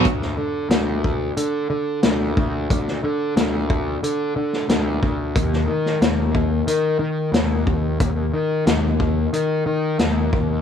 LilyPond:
<<
  \new Staff \with { instrumentName = "Picked electric bass" } { \clef bass \time 4/4 \key dis \phrygian \tempo 4 = 90 d,8 d8 d,4 d8 d8 d,8 d,8 | d,8 d8 d,4 d8 d8 d,8 d,8 | dis,8 dis8 dis,4 dis8 dis8 dis,8 dis,8 | dis,8 dis8 dis,4 dis8 dis8 dis,8 dis,8 | }
  \new DrumStaff \with { instrumentName = "Drums" } \drummode { \time 4/4 <hh bd>16 sn8. <hh sn>8 bd8 hh4 <hh sn>8 bd8 | <hh bd>16 sn8. <hh sn>8 bd8 hh8. sn16 <hh sn>8 bd8 | <hh bd>16 sn8 sn16 <hh sn>8 bd8 hh4 <hh sn>8 bd8 | <hh bd>4 <hh sn>8 bd8 hh4 <hh sn>8 bd8 | }
>>